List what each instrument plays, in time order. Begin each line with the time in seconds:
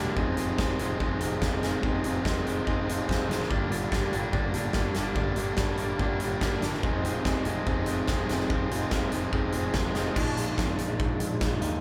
Already playing: clean electric guitar G2 D3 G3 A#3 D4 G4
0.16 picked electric bass F1, clean electric guitar F2 C3 D#3 G#3 C4 G#4, overdriven electric guitar F3, kick
0.36 picked electric bass F1, clean electric guitar F2 C3 D#3 G#3 C4 G#4, overdriven electric guitar F3, closed hi-hat
0.58 picked electric bass F1, clean electric guitar F2 C3 D#3 G#3 C4 G#4, overdriven electric guitar F3, kick, snare
0.79 picked electric bass F1, clean electric guitar F2 C3 D#3 G#3 C4 G#4, overdriven electric guitar F3, closed hi-hat
1.00 picked electric bass F1, clean electric guitar F2 C3 D#3 G#3 C4 G#4, overdriven electric guitar F3, kick
1.19 picked electric bass F1, clean electric guitar F2 C3 D#3 G#3 C4 G#4, overdriven electric guitar F3, closed hi-hat
1.42 picked electric bass F1, clean electric guitar F2 C3 D#3 G#3 C4 G#4, overdriven electric guitar F3, kick, snare
1.62 picked electric bass F1, clean electric guitar F2 C3 D#3 G#3 C4 G#4, overdriven electric guitar F3, snare, closed hi-hat
1.82 picked electric bass F1, clean electric guitar F2 C3 D#3 G#3 C4 G#4, overdriven electric guitar F3, kick
2.04 picked electric bass F1, clean electric guitar F2 C3 D#3 G#3 C4 G#4, overdriven electric guitar F3, closed hi-hat
2.23 picked electric bass F1, clean electric guitar F2 C3 D#3 G#3 C4 G#4, overdriven electric guitar F3, kick, snare
2.44 picked electric bass F1, clean electric guitar F2 C3 D#3 G#3, overdriven electric guitar F3 C4, closed hi-hat
2.48 clean electric guitar C4 G#4
2.64 picked electric bass F1, clean electric guitar F2 C3 D#3 G#3, overdriven electric guitar F3 C4, kick
2.69 clean electric guitar C4 G#4
2.86 picked electric bass F1, clean electric guitar F2 C3 D#3 G#3 C4 G#4, overdriven electric guitar F3, closed hi-hat
3.07 picked electric bass F1, clean electric guitar F2 C3 D#3 G#3 C4 G#4, overdriven electric guitar F3, kick
3.11 snare
3.27 picked electric bass F#1, clean electric guitar F2 C3 D#3 G#3 C4 G#4, overdriven electric guitar F3, closed hi-hat
3.31 snare
3.42 snare
3.49 picked electric bass G1, clean electric guitar G2 D3 G3 A#3 D4 G4, kick
3.69 picked electric bass G1, clean electric guitar G2 D3 G3 A#3 D4 G4, closed hi-hat
3.91 picked electric bass G1, clean electric guitar G2 D3 G3 A#3 D4 G4, kick, snare
4.11 picked electric bass G1, clean electric guitar G2 D3 G3 A#3 D4 G4, closed hi-hat
4.32 picked electric bass G1, clean electric guitar G2 D3 G3 A#3 D4 G4, kick
4.53 picked electric bass G1, clean electric guitar G2 D3 G3 A#3 D4 G4, closed hi-hat
4.73 picked electric bass G1, clean electric guitar G2 D3 G3 A#3 D4 G4, kick, snare
4.94 picked electric bass G1, clean electric guitar G2 D3 G3 A#3 D4 G4, snare, closed hi-hat
5.15 picked electric bass G1, clean electric guitar G2 D3 G3 A#3 D4 G4, kick
5.36 picked electric bass G1, clean electric guitar G2 D3 G3 A#3 D4 G4, closed hi-hat
5.57 picked electric bass G1, clean electric guitar G2 D3 G3 A#3 D4 G4, kick, snare
5.77 picked electric bass G1, clean electric guitar G2 D3 G3 A#3 D4 G4, closed hi-hat
5.99 picked electric bass G1, clean electric guitar G2 D3 G3 A#3 D4 G4, kick
6.20 picked electric bass G1, clean electric guitar G2 D3 G3 A#3 D4 G4, closed hi-hat
6.41 picked electric bass G1, clean electric guitar G2 D3 G3 A#3 D4 G4, kick, snare
6.60 picked electric bass G1, clean electric guitar G2 D3 G3 A#3 D4, snare, closed hi-hat
6.64 clean electric guitar G4
6.74 snare
6.83 picked electric bass F1, clean electric guitar F2 C3 D#3 G#3 C4 G#4, overdriven electric guitar F3, kick
7.02 picked electric bass F1, clean electric guitar F2, overdriven electric guitar F3, closed hi-hat
7.07 clean electric guitar C3 D#3 G#3 C4 G#4
7.24 picked electric bass F1, clean electric guitar F2 C3 D#3 G#3 C4 G#4, overdriven electric guitar F3, kick, snare
7.44 picked electric bass F1, clean electric guitar F2 C3 D#3 G#3, overdriven electric guitar F3, closed hi-hat
7.48 clean electric guitar C4 G#4
7.67 picked electric bass F1, clean electric guitar F2 C3 D#3 G#3 C4 G#4, overdriven electric guitar F3, kick
7.86 picked electric bass F1, clean electric guitar F2 C3 D#3 G#3, overdriven electric guitar F3, closed hi-hat
7.90 clean electric guitar C4 G#4
8.07 picked electric bass F1, clean electric guitar F2 C3, overdriven electric guitar F3 G#3, kick, snare
8.12 clean electric guitar D#3 G#3 C4 G#4
8.27 picked electric bass F1, overdriven electric guitar F2 C3 F3 G#3 C4, snare, closed hi-hat
8.31 clean electric guitar F2 C3 D#3 G#3 C4 G#4
8.40 snare
8.49 picked electric bass F1, clean electric guitar F2 C3 D#3 G#3 C4 G#4, overdriven electric guitar F3, kick
8.70 picked electric bass F1, clean electric guitar F2 C3 D#3 G#3 C4 G#4, overdriven electric guitar F3, closed hi-hat
8.91 picked electric bass F1, clean electric guitar F2 C3 D#3 G#3 C4 G#4, overdriven electric guitar F3, kick, snare
9.11 picked electric bass F1, clean electric guitar F2 C3 D#3 G#3 C4 G#4, overdriven electric guitar F3, closed hi-hat
9.31 picked electric bass F1, clean electric guitar F2 C3 D#3 G#3 C4 G#4, overdriven electric guitar F3, kick
9.52 picked electric bass F1, clean electric guitar F2 C3 D#3 G#3 C4 G#4, overdriven electric guitar F3, closed hi-hat
9.74 picked electric bass F1, clean electric guitar F2 C3 D#3 G#3 C4 G#4, overdriven electric guitar F3, kick, snare
9.93 picked electric bass F1, clean electric guitar F2 C3 D#3 G#3 C4 G#4, overdriven electric guitar F3, snare, closed hi-hat
10.15 picked electric bass A#1, clean electric guitar A#2 D#3 G#3 F4, overdriven electric guitar F3 D4, kick, crash
10.36 picked electric bass A#1, closed hi-hat
10.58 picked electric bass F2, kick, snare
10.78 picked electric bass A#1, closed hi-hat
11.00 picked electric bass A#1, kick
11.19 picked electric bass A#1, closed hi-hat
11.41 picked electric bass A#1, kick, snare
11.61 picked electric bass D#2, clean electric guitar A#2 D#3 G#3 D#4 F4, closed hi-hat